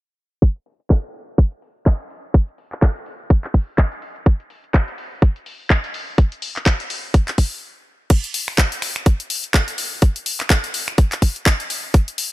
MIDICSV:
0, 0, Header, 1, 2, 480
1, 0, Start_track
1, 0, Tempo, 480000
1, 422, Time_signature, 4, 2, 24, 8
1, 12322, End_track
2, 0, Start_track
2, 0, Title_t, "Drums"
2, 421, Note_on_c, 9, 36, 107
2, 521, Note_off_c, 9, 36, 0
2, 660, Note_on_c, 9, 46, 93
2, 760, Note_off_c, 9, 46, 0
2, 799, Note_on_c, 9, 42, 34
2, 899, Note_off_c, 9, 42, 0
2, 901, Note_on_c, 9, 36, 111
2, 903, Note_on_c, 9, 39, 112
2, 1001, Note_off_c, 9, 36, 0
2, 1003, Note_off_c, 9, 39, 0
2, 1141, Note_on_c, 9, 46, 82
2, 1241, Note_off_c, 9, 46, 0
2, 1381, Note_on_c, 9, 42, 75
2, 1382, Note_on_c, 9, 36, 109
2, 1481, Note_off_c, 9, 42, 0
2, 1482, Note_off_c, 9, 36, 0
2, 1519, Note_on_c, 9, 42, 50
2, 1619, Note_off_c, 9, 42, 0
2, 1621, Note_on_c, 9, 46, 93
2, 1721, Note_off_c, 9, 46, 0
2, 1862, Note_on_c, 9, 36, 106
2, 1864, Note_on_c, 9, 39, 112
2, 1962, Note_off_c, 9, 36, 0
2, 1964, Note_off_c, 9, 39, 0
2, 2000, Note_on_c, 9, 42, 51
2, 2100, Note_off_c, 9, 42, 0
2, 2102, Note_on_c, 9, 46, 83
2, 2202, Note_off_c, 9, 46, 0
2, 2341, Note_on_c, 9, 42, 73
2, 2342, Note_on_c, 9, 36, 111
2, 2441, Note_off_c, 9, 42, 0
2, 2442, Note_off_c, 9, 36, 0
2, 2480, Note_on_c, 9, 42, 47
2, 2580, Note_off_c, 9, 42, 0
2, 2581, Note_on_c, 9, 46, 100
2, 2681, Note_off_c, 9, 46, 0
2, 2720, Note_on_c, 9, 42, 34
2, 2723, Note_on_c, 9, 39, 35
2, 2820, Note_off_c, 9, 42, 0
2, 2822, Note_on_c, 9, 36, 115
2, 2822, Note_on_c, 9, 42, 75
2, 2823, Note_off_c, 9, 39, 0
2, 2825, Note_on_c, 9, 39, 114
2, 2922, Note_off_c, 9, 36, 0
2, 2922, Note_off_c, 9, 42, 0
2, 2925, Note_off_c, 9, 39, 0
2, 2960, Note_on_c, 9, 42, 49
2, 3060, Note_off_c, 9, 42, 0
2, 3061, Note_on_c, 9, 46, 85
2, 3161, Note_off_c, 9, 46, 0
2, 3302, Note_on_c, 9, 36, 117
2, 3302, Note_on_c, 9, 42, 72
2, 3402, Note_off_c, 9, 36, 0
2, 3402, Note_off_c, 9, 42, 0
2, 3441, Note_on_c, 9, 42, 50
2, 3443, Note_on_c, 9, 39, 36
2, 3541, Note_off_c, 9, 42, 0
2, 3541, Note_on_c, 9, 46, 101
2, 3542, Note_on_c, 9, 36, 57
2, 3543, Note_off_c, 9, 39, 0
2, 3641, Note_off_c, 9, 46, 0
2, 3642, Note_off_c, 9, 36, 0
2, 3781, Note_on_c, 9, 42, 75
2, 3782, Note_on_c, 9, 36, 112
2, 3784, Note_on_c, 9, 39, 115
2, 3881, Note_off_c, 9, 42, 0
2, 3882, Note_off_c, 9, 36, 0
2, 3884, Note_off_c, 9, 39, 0
2, 3919, Note_on_c, 9, 42, 50
2, 4019, Note_off_c, 9, 42, 0
2, 4021, Note_on_c, 9, 46, 89
2, 4120, Note_off_c, 9, 46, 0
2, 4159, Note_on_c, 9, 42, 33
2, 4259, Note_off_c, 9, 42, 0
2, 4261, Note_on_c, 9, 36, 115
2, 4261, Note_on_c, 9, 42, 73
2, 4361, Note_off_c, 9, 36, 0
2, 4361, Note_off_c, 9, 42, 0
2, 4400, Note_on_c, 9, 42, 48
2, 4500, Note_off_c, 9, 42, 0
2, 4501, Note_on_c, 9, 46, 98
2, 4601, Note_off_c, 9, 46, 0
2, 4640, Note_on_c, 9, 42, 33
2, 4740, Note_off_c, 9, 42, 0
2, 4742, Note_on_c, 9, 36, 120
2, 4742, Note_on_c, 9, 42, 71
2, 4744, Note_on_c, 9, 39, 115
2, 4842, Note_off_c, 9, 36, 0
2, 4842, Note_off_c, 9, 42, 0
2, 4844, Note_off_c, 9, 39, 0
2, 4880, Note_on_c, 9, 42, 48
2, 4980, Note_off_c, 9, 42, 0
2, 4981, Note_on_c, 9, 46, 89
2, 5081, Note_off_c, 9, 46, 0
2, 5221, Note_on_c, 9, 42, 71
2, 5222, Note_on_c, 9, 36, 120
2, 5321, Note_off_c, 9, 42, 0
2, 5322, Note_off_c, 9, 36, 0
2, 5360, Note_on_c, 9, 42, 50
2, 5460, Note_off_c, 9, 42, 0
2, 5461, Note_on_c, 9, 46, 100
2, 5561, Note_off_c, 9, 46, 0
2, 5701, Note_on_c, 9, 36, 118
2, 5701, Note_on_c, 9, 42, 72
2, 5704, Note_on_c, 9, 39, 117
2, 5801, Note_off_c, 9, 36, 0
2, 5801, Note_off_c, 9, 42, 0
2, 5804, Note_off_c, 9, 39, 0
2, 5840, Note_on_c, 9, 42, 48
2, 5940, Note_off_c, 9, 42, 0
2, 5941, Note_on_c, 9, 46, 87
2, 6041, Note_off_c, 9, 46, 0
2, 6181, Note_on_c, 9, 36, 118
2, 6181, Note_on_c, 9, 42, 70
2, 6281, Note_off_c, 9, 36, 0
2, 6281, Note_off_c, 9, 42, 0
2, 6320, Note_on_c, 9, 42, 46
2, 6420, Note_off_c, 9, 42, 0
2, 6421, Note_on_c, 9, 46, 104
2, 6521, Note_off_c, 9, 46, 0
2, 6560, Note_on_c, 9, 42, 33
2, 6562, Note_on_c, 9, 39, 34
2, 6660, Note_off_c, 9, 42, 0
2, 6661, Note_on_c, 9, 36, 119
2, 6661, Note_on_c, 9, 42, 71
2, 6662, Note_off_c, 9, 39, 0
2, 6664, Note_on_c, 9, 39, 108
2, 6761, Note_off_c, 9, 36, 0
2, 6761, Note_off_c, 9, 42, 0
2, 6764, Note_off_c, 9, 39, 0
2, 6800, Note_on_c, 9, 42, 47
2, 6900, Note_off_c, 9, 42, 0
2, 6901, Note_on_c, 9, 46, 90
2, 7001, Note_off_c, 9, 46, 0
2, 7141, Note_on_c, 9, 36, 120
2, 7141, Note_on_c, 9, 42, 71
2, 7241, Note_off_c, 9, 36, 0
2, 7241, Note_off_c, 9, 42, 0
2, 7279, Note_on_c, 9, 42, 50
2, 7282, Note_on_c, 9, 39, 36
2, 7379, Note_off_c, 9, 42, 0
2, 7380, Note_on_c, 9, 46, 102
2, 7381, Note_on_c, 9, 36, 59
2, 7382, Note_off_c, 9, 39, 0
2, 7480, Note_off_c, 9, 46, 0
2, 7481, Note_off_c, 9, 36, 0
2, 8100, Note_on_c, 9, 42, 81
2, 8100, Note_on_c, 9, 49, 92
2, 8102, Note_on_c, 9, 36, 113
2, 8200, Note_off_c, 9, 42, 0
2, 8200, Note_off_c, 9, 49, 0
2, 8202, Note_off_c, 9, 36, 0
2, 8240, Note_on_c, 9, 42, 51
2, 8340, Note_off_c, 9, 42, 0
2, 8341, Note_on_c, 9, 46, 103
2, 8441, Note_off_c, 9, 46, 0
2, 8480, Note_on_c, 9, 26, 58
2, 8580, Note_off_c, 9, 26, 0
2, 8581, Note_on_c, 9, 42, 81
2, 8582, Note_on_c, 9, 36, 115
2, 8584, Note_on_c, 9, 39, 122
2, 8681, Note_off_c, 9, 42, 0
2, 8682, Note_off_c, 9, 36, 0
2, 8684, Note_off_c, 9, 39, 0
2, 8720, Note_on_c, 9, 42, 52
2, 8820, Note_off_c, 9, 42, 0
2, 8822, Note_on_c, 9, 26, 59
2, 8822, Note_on_c, 9, 46, 89
2, 8922, Note_off_c, 9, 26, 0
2, 8922, Note_off_c, 9, 46, 0
2, 8960, Note_on_c, 9, 26, 61
2, 8960, Note_on_c, 9, 42, 37
2, 9060, Note_off_c, 9, 26, 0
2, 9060, Note_off_c, 9, 42, 0
2, 9061, Note_on_c, 9, 42, 78
2, 9062, Note_on_c, 9, 36, 117
2, 9161, Note_off_c, 9, 42, 0
2, 9162, Note_off_c, 9, 36, 0
2, 9200, Note_on_c, 9, 42, 53
2, 9300, Note_off_c, 9, 42, 0
2, 9300, Note_on_c, 9, 46, 100
2, 9400, Note_off_c, 9, 46, 0
2, 9439, Note_on_c, 9, 42, 37
2, 9539, Note_off_c, 9, 42, 0
2, 9540, Note_on_c, 9, 42, 80
2, 9542, Note_on_c, 9, 36, 113
2, 9543, Note_on_c, 9, 39, 119
2, 9640, Note_off_c, 9, 42, 0
2, 9642, Note_off_c, 9, 36, 0
2, 9643, Note_off_c, 9, 39, 0
2, 9678, Note_on_c, 9, 42, 52
2, 9778, Note_off_c, 9, 42, 0
2, 9780, Note_on_c, 9, 46, 90
2, 9880, Note_off_c, 9, 46, 0
2, 10020, Note_on_c, 9, 42, 77
2, 10022, Note_on_c, 9, 36, 120
2, 10120, Note_off_c, 9, 42, 0
2, 10122, Note_off_c, 9, 36, 0
2, 10159, Note_on_c, 9, 42, 50
2, 10259, Note_off_c, 9, 42, 0
2, 10260, Note_on_c, 9, 46, 107
2, 10360, Note_off_c, 9, 46, 0
2, 10400, Note_on_c, 9, 26, 59
2, 10400, Note_on_c, 9, 42, 35
2, 10402, Note_on_c, 9, 39, 38
2, 10500, Note_off_c, 9, 26, 0
2, 10500, Note_off_c, 9, 42, 0
2, 10501, Note_on_c, 9, 42, 78
2, 10502, Note_off_c, 9, 39, 0
2, 10502, Note_on_c, 9, 36, 123
2, 10503, Note_on_c, 9, 39, 122
2, 10601, Note_off_c, 9, 42, 0
2, 10602, Note_off_c, 9, 36, 0
2, 10603, Note_off_c, 9, 39, 0
2, 10639, Note_on_c, 9, 42, 51
2, 10739, Note_off_c, 9, 42, 0
2, 10740, Note_on_c, 9, 46, 91
2, 10840, Note_off_c, 9, 46, 0
2, 10879, Note_on_c, 9, 26, 62
2, 10879, Note_on_c, 9, 42, 36
2, 10979, Note_off_c, 9, 26, 0
2, 10979, Note_off_c, 9, 42, 0
2, 10981, Note_on_c, 9, 42, 78
2, 10982, Note_on_c, 9, 36, 124
2, 11081, Note_off_c, 9, 42, 0
2, 11082, Note_off_c, 9, 36, 0
2, 11120, Note_on_c, 9, 42, 51
2, 11122, Note_on_c, 9, 39, 39
2, 11220, Note_off_c, 9, 42, 0
2, 11221, Note_on_c, 9, 46, 107
2, 11222, Note_off_c, 9, 39, 0
2, 11222, Note_on_c, 9, 36, 60
2, 11321, Note_off_c, 9, 46, 0
2, 11322, Note_off_c, 9, 36, 0
2, 11360, Note_on_c, 9, 42, 37
2, 11460, Note_off_c, 9, 42, 0
2, 11461, Note_on_c, 9, 36, 121
2, 11462, Note_on_c, 9, 42, 81
2, 11464, Note_on_c, 9, 39, 120
2, 11561, Note_off_c, 9, 36, 0
2, 11561, Note_off_c, 9, 42, 0
2, 11564, Note_off_c, 9, 39, 0
2, 11600, Note_on_c, 9, 42, 51
2, 11700, Note_off_c, 9, 42, 0
2, 11701, Note_on_c, 9, 46, 92
2, 11801, Note_off_c, 9, 46, 0
2, 11941, Note_on_c, 9, 36, 122
2, 11941, Note_on_c, 9, 42, 75
2, 12041, Note_off_c, 9, 36, 0
2, 12041, Note_off_c, 9, 42, 0
2, 12080, Note_on_c, 9, 42, 49
2, 12180, Note_off_c, 9, 42, 0
2, 12181, Note_on_c, 9, 46, 107
2, 12281, Note_off_c, 9, 46, 0
2, 12322, End_track
0, 0, End_of_file